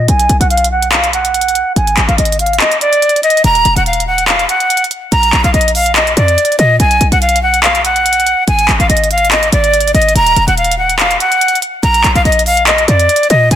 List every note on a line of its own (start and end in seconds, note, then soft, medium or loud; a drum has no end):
0.08 0.29 B1 loud
0.08 0.39 G#5 loud
0.08 closed hi-hat medium
0.20 closed hi-hat medium
0.29 0.40 B1 loud
0.29 closed hi-hat medium
0.40 1.62 B1 loud
0.40 0.50 F#5 medium
0.40 closed hi-hat medium
0.50 0.70 F5 medium
0.50 closed hi-hat soft
0.57 closed hi-hat medium
0.64 closed hi-hat medium
0.71 0.91 F#5 medium
0.82 closed hi-hat medium
0.92 1.12 F5 medium
0.92 clap loud
0.92 closed hi-hat medium
1.04 closed hi-hat medium
1.13 1.73 F#5 medium
1.13 closed hi-hat medium
1.25 closed hi-hat medium
1.34 closed hi-hat medium
1.41 closed hi-hat medium
1.48 closed hi-hat soft
1.55 closed hi-hat medium
1.76 1.96 G#1 loud
1.76 2.07 G#5 loud
1.76 closed hi-hat medium
1.87 closed hi-hat medium
1.97 2.08 G#1 loud
1.97 clap medium
1.97 closed hi-hat medium
2.08 2.18 G#1 loud
2.08 2.17 F5 medium
2.08 closed hi-hat medium
2.18 2.59 G#1 loud
2.18 2.38 D#5 medium
2.18 closed hi-hat medium
2.25 closed hi-hat medium
2.32 closed hi-hat medium
2.39 2.59 F5 medium
2.39 closed hi-hat medium
2.39 open hi-hat medium
2.46 closed hi-hat medium
2.53 closed hi-hat soft
2.60 2.80 D#5 loud
2.60 clap loud
2.60 closed hi-hat medium
2.71 closed hi-hat medium
2.81 3.21 D5 loud
2.81 closed hi-hat medium
2.93 closed hi-hat medium
3.02 closed hi-hat medium
3.09 closed hi-hat medium
3.16 closed hi-hat medium
3.23 3.43 D#5 medium
3.23 closed hi-hat medium
3.30 closed hi-hat medium
3.37 closed hi-hat medium
3.44 3.64 D#1 loud
3.44 3.75 A#5 loud
3.44 closed hi-hat medium
3.55 closed hi-hat medium
3.65 3.76 D#1 loud
3.65 closed hi-hat medium
3.76 4.46 D#1 loud
3.76 3.86 F#5 medium
3.76 closed hi-hat medium
3.86 4.06 F5 medium
3.86 closed hi-hat soft
3.93 closed hi-hat medium
4.00 closed hi-hat medium
4.07 4.27 F#5 medium
4.18 closed hi-hat medium
4.28 4.48 F5 medium
4.28 clap loud
4.28 closed hi-hat medium
4.39 closed hi-hat medium
4.49 4.84 F#5 medium
4.49 closed hi-hat medium
4.60 closed hi-hat soft
4.70 closed hi-hat medium
4.77 closed hi-hat medium
4.84 closed hi-hat soft
4.91 closed hi-hat medium
5.12 5.32 A#1 loud
5.12 5.42 A#5 loud
5.12 closed hi-hat medium
5.23 closed hi-hat medium
5.33 5.44 A#1 loud
5.33 clap medium
5.33 closed hi-hat medium
5.44 5.53 A#1 loud
5.44 5.53 F5 medium
5.44 closed hi-hat medium
5.54 6.14 A#1 loud
5.54 5.73 D#5 medium
5.54 closed hi-hat soft
5.61 closed hi-hat medium
5.68 closed hi-hat medium
5.75 5.95 F5 medium
5.75 open hi-hat medium
5.86 closed hi-hat medium
5.96 6.15 D#5 medium
5.96 clap loud
5.96 closed hi-hat medium
6.07 closed hi-hat medium
6.17 6.37 F2 loud
6.17 6.56 D5 medium
6.17 closed hi-hat medium
6.28 closed hi-hat soft
6.38 closed hi-hat medium
6.45 closed hi-hat medium
6.52 closed hi-hat soft
6.59 6.79 A#2 loud
6.59 6.78 D#5 medium
6.59 closed hi-hat medium
6.80 7.00 B1 loud
6.80 7.10 G#5 loud
6.80 closed hi-hat medium
6.91 closed hi-hat medium
7.01 7.11 B1 loud
7.01 closed hi-hat medium
7.12 8.34 B1 loud
7.12 7.21 F#5 medium
7.12 closed hi-hat medium
7.22 7.41 F5 medium
7.22 closed hi-hat soft
7.29 closed hi-hat medium
7.36 closed hi-hat medium
7.43 7.62 F#5 medium
7.54 closed hi-hat medium
7.63 7.83 F5 medium
7.63 clap loud
7.63 closed hi-hat medium
7.75 closed hi-hat medium
7.85 8.44 F#5 medium
7.85 closed hi-hat medium
7.96 closed hi-hat soft
8.06 closed hi-hat medium
8.13 closed hi-hat medium
8.20 closed hi-hat soft
8.27 closed hi-hat medium
8.48 8.68 G#1 loud
8.48 8.78 G#5 loud
8.48 closed hi-hat medium
8.59 closed hi-hat medium
8.69 8.79 G#1 loud
8.69 clap medium
8.69 closed hi-hat medium
8.80 8.89 G#1 loud
8.80 8.89 F5 medium
8.80 closed hi-hat medium
8.89 9.50 G#1 loud
8.89 9.09 D#5 medium
8.89 closed hi-hat medium
8.97 closed hi-hat medium
9.04 closed hi-hat medium
9.11 9.31 F5 medium
9.11 closed hi-hat medium
9.11 open hi-hat medium
9.18 closed hi-hat medium
9.25 closed hi-hat soft
9.32 9.51 D#5 medium
9.32 clap loud
9.32 closed hi-hat medium
9.43 closed hi-hat medium
9.52 9.93 G#1 loud
9.52 9.92 D5 medium
9.52 closed hi-hat medium
9.64 closed hi-hat medium
9.74 closed hi-hat medium
9.80 closed hi-hat medium
9.88 closed hi-hat medium
9.94 10.15 G#1 loud
9.94 10.14 D#5 medium
9.94 closed hi-hat medium
10.02 closed hi-hat medium
10.09 closed hi-hat medium
10.15 10.36 D#1 loud
10.15 10.46 A#5 loud
10.15 closed hi-hat medium
10.27 closed hi-hat medium
10.36 10.47 D#1 loud
10.36 closed hi-hat medium
10.48 11.17 D#1 loud
10.48 10.57 F#5 medium
10.48 closed hi-hat medium
10.57 10.77 F5 medium
10.57 closed hi-hat soft
10.64 closed hi-hat medium
10.71 closed hi-hat medium
10.78 10.98 F#5 medium
10.90 closed hi-hat medium
10.99 11.19 F5 medium
10.99 clap loud
10.99 closed hi-hat medium
11.11 closed hi-hat medium
11.20 11.59 F#5 medium
11.20 closed hi-hat medium
11.32 closed hi-hat medium
11.41 closed hi-hat medium
11.48 closed hi-hat medium
11.55 closed hi-hat soft
11.62 closed hi-hat medium
11.83 12.03 A#1 loud
11.83 12.13 A#5 loud
11.83 closed hi-hat medium
11.94 closed hi-hat medium
12.04 12.15 A#1 loud
12.04 clap medium
12.04 closed hi-hat medium
12.15 12.25 A#1 loud
12.15 12.24 F5 medium
12.15 closed hi-hat medium
12.25 12.86 A#1 loud
12.25 12.45 D#5 medium
12.25 closed hi-hat soft
12.32 closed hi-hat medium
12.39 closed hi-hat medium
12.46 12.66 F5 medium
12.46 open hi-hat medium
12.57 closed hi-hat medium
12.67 12.87 D#5 medium
12.67 clap loud
12.67 closed hi-hat medium
12.78 closed hi-hat medium
12.88 13.08 F2 loud
12.88 13.28 D5 medium
12.88 closed hi-hat medium
12.99 closed hi-hat soft
13.09 closed hi-hat medium
13.16 closed hi-hat medium
13.23 closed hi-hat soft
13.30 13.50 A#2 loud
13.30 13.50 D#5 medium
13.30 closed hi-hat medium
13.51 13.55 B1 loud
13.51 13.55 G#5 loud
13.51 closed hi-hat medium